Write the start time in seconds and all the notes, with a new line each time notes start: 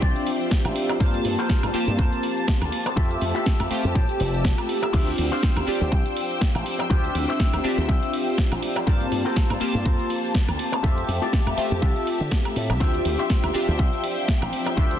Already playing: F3 C4 D4 F4 G4 C5 D5 E5 G5
0.01 C2 F4 G4 C5 D5, kick, closed hi-hat, shaker
0.16 closed hi-hat, shaker
0.27 open hi-hat
0.40 shaker
0.51 muted clean electric guitar stroke, kick, snare, open hi-hat, shaker
0.65 A1, closed hi-hat, high woodblock, shaker
0.76 open hi-hat
0.89 muted clean electric guitar stroke, high woodblock, shaker
1.00 G2 A#3 C4 F4 G4 A4 A#4 C5 A5, kick, closed hi-hat, shaker
1.14 closed hi-hat, shaker
1.25 G2, muted clean electric guitar stroke, open hi-hat
1.38 F4 A4 A#4 C5, shaker
1.49 kick, snare, closed hi-hat, shaker
1.63 G2, closed hi-hat, high woodblock, shaker
1.73 A#3 C4 F4 G4 A5, muted slap bass stroke, open hi-hat
1.88 G2, closed hi-hat, shaker
1.98 F2 F4 A4 A#4 C5, kick, closed hi-hat, shaker
2.12 closed hi-hat, shaker
2.23 open hi-hat
2.37 shaker
2.48 muted clean electric guitar stroke, kick, snare, closed hi-hat, shaker
2.62 D2, closed hi-hat, high woodblock, shaker
2.72 open hi-hat
2.86 muted clean electric guitar stroke, closed hi-hat, high woodblock, shaker
2.96 F2 A3 C4 F4 G4 A4 E5 E6, kick, closed hi-hat, shaker
3.11 closed hi-hat, shaker
3.21 F2, muted clean electric guitar stroke, open hi-hat
3.35 F4 G4 A4 E5, closed hi-hat, shaker
3.46 kick, snare, closed hi-hat, shaker
3.60 F2, closed hi-hat, high woodblock, shaker
3.70 A3 C4 F4 G4, muted slap bass stroke, open hi-hat
3.84 F2, closed hi-hat, shaker
3.95 A2 F4 G4 A4 G5, kick, closed hi-hat, shaker
4.09 closed hi-hat, shaker
4.20 F1, open hi-hat
4.34 shaker
4.44 muted clean electric guitar stroke, kick, snare, open hi-hat, shaker
4.58 closed hi-hat, high woodblock, shaker
4.69 open hi-hat
4.82 muted clean electric guitar stroke, closed hi-hat, high woodblock, shaker
4.93 D2 F3 C4 D4 F4 G4 C5 E5 G5, kick, closed hi-hat, crash, ride, shaker
5.07 closed hi-hat, shaker
5.18 D2, muted clean electric guitar stroke, open hi-hat, ride
5.31 F4 G4 C5 F5, shaker
5.43 kick, snare, closed hi-hat, ride, shaker
5.57 D2, closed hi-hat, high woodblock, shaker
5.67 C4 D4 F4 G4, muted slap bass stroke, open hi-hat, ride
5.81 D2, closed hi-hat, shaker
5.91 C2 F4 G4 C5 G5, kick, closed hi-hat, ride, shaker
6.06 closed hi-hat, shaker
6.17 open hi-hat, ride
6.31 shaker
6.41 muted clean electric guitar stroke, kick, snare, closed hi-hat, ride, shaker
6.55 A1, closed hi-hat, high woodblock, shaker
6.66 open hi-hat, ride
6.79 muted clean electric guitar stroke, high woodblock, shaker
6.90 D2 C4 D4 F4 G4 C5 E5 G5, kick, closed hi-hat, ride, shaker
7.04 closed hi-hat, shaker
7.14 D2, muted clean electric guitar stroke, open hi-hat, ride
7.28 F4 G4 C5 E5, shaker
7.40 kick, snare, closed hi-hat, ride, shaker
7.53 D2, closed hi-hat, high woodblock, shaker
7.64 C4 D4 F4 G4 E5, muted slap bass stroke, open hi-hat, ride
7.78 D2, closed hi-hat, shaker
7.88 C2 F4 G4 C5 E5, kick, closed hi-hat, ride, shaker
8.03 closed hi-hat, shaker
8.13 open hi-hat, ride
8.27 shaker
8.38 muted clean electric guitar stroke, kick, snare, open hi-hat, ride, shaker
8.52 A1, closed hi-hat, high woodblock, shaker
8.63 open hi-hat, ride
8.76 muted clean electric guitar stroke, high woodblock, shaker
8.86 G2 A#3 C4 F4 G4 A4 A#4 C5 A5, kick, closed hi-hat, ride, shaker
9.01 closed hi-hat, shaker
9.11 G2, muted clean electric guitar stroke, open hi-hat, ride
9.25 F4 A4 A#4 C5, shaker
9.36 kick, snare, closed hi-hat, ride, shaker
9.50 G2, closed hi-hat, high woodblock, shaker
9.60 A#3 C4 F4 G4 A5, muted slap bass stroke, open hi-hat, ride
9.75 G2, shaker
9.85 F2 F4 A4 A#4 C5, kick, closed hi-hat, ride, shaker
9.99 closed hi-hat, shaker
10.10 open hi-hat, ride
10.24 shaker
10.34 muted clean electric guitar stroke, kick, snare, closed hi-hat, ride, shaker
10.48 D2, closed hi-hat, high woodblock, shaker
10.59 open hi-hat, ride
10.72 muted clean electric guitar stroke, closed hi-hat, high woodblock, shaker
10.83 F2 A3 C4 F4 G4 A4 E5, kick, closed hi-hat, ride, shaker
10.98 closed hi-hat, shaker
11.08 F2, muted clean electric guitar stroke, open hi-hat, ride
11.22 F4 G4 A4 D5, shaker
11.33 kick, snare, closed hi-hat, ride, shaker
11.47 F2, closed hi-hat, high woodblock, shaker
11.57 A3 C4 F4 G4 E5, muted slap bass stroke, open hi-hat, ride
11.72 F2, shaker
11.82 C2 F4 G4 A4 E5, kick, closed hi-hat, ride, shaker
11.96 closed hi-hat, shaker
12.07 open hi-hat, ride
12.21 D3, shaker
12.31 muted clean electric guitar stroke, kick, snare, open hi-hat, ride, shaker
12.45 closed hi-hat, high woodblock, shaker
12.56 A2, open hi-hat, ride
12.70 C2, muted clean electric guitar stroke, high woodblock, shaker
12.80 D2 F3 C4 D4 F4 G4 C5 E5 G5, kick, closed hi-hat, ride, shaker
12.94 closed hi-hat, shaker
13.05 D2, muted clean electric guitar stroke, open hi-hat, ride
13.18 F4 G4 C5 E5, shaker
13.30 kick, snare, closed hi-hat, ride, shaker
13.44 D2, closed hi-hat, high woodblock, shaker
13.54 C4 D4 F4 G4 E5, muted slap bass stroke, open hi-hat, ride
13.68 D2, closed hi-hat, shaker
13.78 C2 F4 G4 C5 E5, kick, closed hi-hat, ride, shaker
13.93 closed hi-hat, shaker
14.04 open hi-hat, ride
14.18 shaker
14.28 muted clean electric guitar stroke, kick, snare, closed hi-hat, ride, shaker
14.42 A1, closed hi-hat, high woodblock, shaker
14.53 open hi-hat, ride
14.66 muted clean electric guitar stroke, closed hi-hat, high woodblock, shaker
14.77 D2 C4 D4 F4 G4 C5 E5, kick, closed hi-hat, ride, shaker
14.91 closed hi-hat, shaker